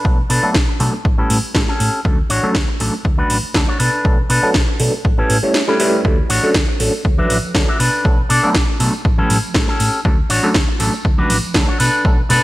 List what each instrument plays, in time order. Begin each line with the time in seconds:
Already playing: clean electric guitar D4 A4 B4
0.05 fingered electric bass B1, reed electric piano F#3 A3 B3 D4 A4, kick
0.29 fingered electric bass B2, clean electric guitar D4 A4 B4, open hi-hat
0.43 reed electric piano F#3 A3 B3 D4 A4, muted fingered electric bass stroke
0.54 fingered electric bass B1, kick, snare
0.68 muted clean electric guitar stroke
0.80 fingered electric bass B2, reed electric piano F#3 A3 B3 D4 A4, muted clean electric guitar stroke, open hi-hat
0.93 muted clean electric guitar stroke
1.05 fingered electric bass A1, kick
1.18 reed electric piano G3 A3 C#4 E4 B4, clean electric guitar C#4 G4 A4
1.30 fingered electric bass A2, open hi-hat
1.43 muted fingered electric bass stroke
1.55 fingered electric bass A1, reed electric piano G3 A3 C#4 E4 A4, muted clean electric guitar stroke, kick, snare
1.68 clean electric guitar C#4 G4 A4, snare
1.80 fingered electric bass A2, open hi-hat
2.05 fingered electric bass D2, reed electric piano F#3 A3 C#4 D4 A4, kick
2.30 fingered electric bass A1, clean electric guitar D4 F#4 C#5, open hi-hat
2.43 reed electric piano F#3 A3 C#4 D4 A4
2.55 fingered electric bass D2, kick, snare
2.68 muted clean electric guitar stroke
2.80 fingered electric bass A1, reed electric piano F#3 A3 C#4 D4 A4, muted clean electric guitar stroke, open hi-hat
2.93 muted clean electric guitar stroke
3.05 fingered electric bass D2, kick
3.18 reed electric piano F#3 A3 C#4 D4 B4, clean electric guitar D4 F#4 B4
3.30 fingered electric bass A1, open hi-hat
3.54 fingered electric bass D2, reed electric piano F#3 A3 C#4 D4 A4, muted clean electric guitar stroke, kick, snare
3.68 clean electric guitar D4 F#4 C#5
3.79 fingered electric bass B2, clean electric guitar D4 A4 B4, open hi-hat
4.04 fingered electric bass B1, reed electric piano F#3 A3 B3 D4 A4, kick
4.29 fingered electric bass B2, clean electric guitar D4 A4 B4, open hi-hat
4.43 reed electric piano F#3 A3 B3 D4 A4, muted fingered electric bass stroke
4.54 fingered electric bass B1, kick, snare
4.68 muted clean electric guitar stroke
4.79 fingered electric bass B2, reed electric piano F#3 A3 B3 D4 A4, muted clean electric guitar stroke, open hi-hat
4.93 muted clean electric guitar stroke
5.05 fingered electric bass A1, kick
5.18 reed electric piano G3 A3 C#4 E4 B4, clean electric guitar C#4 G4 A4
5.30 fingered electric bass A2, open hi-hat
5.43 reed electric piano G3 A3 C#4 E4 C#5, muted fingered electric bass stroke
5.54 muted clean electric guitar stroke, snare
5.68 reed electric piano G3 A3 C#4 E4 A4, clean electric guitar C#4 G4 B4, snare
5.80 reed electric piano G3 A3 C#4 E4 B4, open hi-hat
6.05 fingered electric bass D2, reed electric piano F#3 A3 C#4 D4 A4, kick, tambourine
6.29 fingered electric bass A1, clean electric guitar D4 F#4 C#5, open hi-hat, tambourine
6.43 reed electric piano F#3 A3 C#4 D4 A4, tambourine
6.54 fingered electric bass D2, kick, snare
6.68 muted clean electric guitar stroke
6.80 fingered electric bass A1, reed electric piano F#3 A3 C#4 D4 A4, muted clean electric guitar stroke, open hi-hat, tambourine
6.93 muted clean electric guitar stroke, tambourine
7.05 fingered electric bass D2, kick
7.18 reed electric piano F#3 A3 C#4 D4 B4, clean electric guitar D4 F#4 E5, high conga
7.30 fingered electric bass A1, open hi-hat, tambourine
7.43 muted fingered electric bass stroke, tambourine
7.55 fingered electric bass D2, reed electric piano F#3 A3 C#4 D4 A4, muted clean electric guitar stroke, kick, snare
7.68 clean electric guitar D4 F#4 E5
7.79 fingered electric bass B2, clean electric guitar D4 A4 B4, open hi-hat, tambourine
7.92 tambourine
8.05 fingered electric bass B1, reed electric piano F#3 A3 B3 D4 A4, kick
8.29 fingered electric bass B2, clean electric guitar D4 A4 D5, open hi-hat, tambourine
8.43 reed electric piano F#3 A3 B3 D4 A4, muted fingered electric bass stroke, tambourine
8.55 fingered electric bass B1, kick, snare
8.68 muted clean electric guitar stroke
8.79 fingered electric bass B2, reed electric piano F#3 A3 B3 D4 A4, muted clean electric guitar stroke, open hi-hat, tambourine
8.93 muted clean electric guitar stroke, tambourine
9.05 fingered electric bass A1, kick
9.17 reed electric piano G3 A3 C#4 E4 B4, clean electric guitar C#4 G4 A4, high conga
9.30 fingered electric bass A2, open hi-hat, tambourine
9.43 muted fingered electric bass stroke, tambourine
9.54 fingered electric bass A1, reed electric piano G3 A3 C#4 E4 A4, muted clean electric guitar stroke, kick, snare
9.68 clean electric guitar C#4 G4 A4, snare
9.79 fingered electric bass A2, open hi-hat, tambourine
9.93 tambourine
10.05 fingered electric bass D2, reed electric piano F#3 A3 C#4 D4 A4, kick
10.30 fingered electric bass A1, clean electric guitar D4 F#4 C#5, open hi-hat, tambourine
10.43 reed electric piano F#3 A3 C#4 D4 A4, muted fingered electric bass stroke, tambourine
10.54 fingered electric bass D2, kick, snare
10.68 muted clean electric guitar stroke
10.79 fingered electric bass A1, reed electric piano F#3 A3 C#4 D4 A4, muted clean electric guitar stroke, open hi-hat, tambourine
10.93 muted clean electric guitar stroke, tambourine
11.05 fingered electric bass D2, kick, tambourine
11.17 reed electric piano F#3 A3 C#4 D4 B4, clean electric guitar D4 F#4 B4, high conga
11.30 fingered electric bass A1, open hi-hat, tambourine
11.43 muted fingered electric bass stroke, tambourine
11.54 fingered electric bass D2, reed electric piano F#3 A3 C#4 D4 A4, kick, snare
11.68 clean electric guitar D4 F#4 C#5
11.80 fingered electric bass B2, clean electric guitar D4 A4 B4, open hi-hat, tambourine
11.93 tambourine
12.04 fingered electric bass B1, reed electric piano F#3 A3 B3 D4 A4, kick, tambourine
12.29 fingered electric bass B2, clean electric guitar D4 A4 B4, open hi-hat, tambourine, low conga